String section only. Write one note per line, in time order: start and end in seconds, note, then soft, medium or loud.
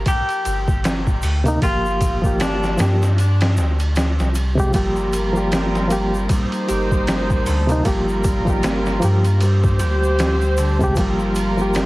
4.74 6.28 G3 medium
4.74 6.28 F4 medium
4.74 6.28 A#4 medium
6.30 7.84 A#3 medium
6.30 7.84 D#4 medium
6.30 7.84 C5 medium
7.86 9.40 G3 medium
7.86 9.40 F4 medium
7.86 9.40 A#4 medium
9.41 10.95 G4 medium
9.41 10.95 C5 medium
10.97 11.86 G3 medium
10.97 11.86 F4 medium
10.97 11.86 A#4 medium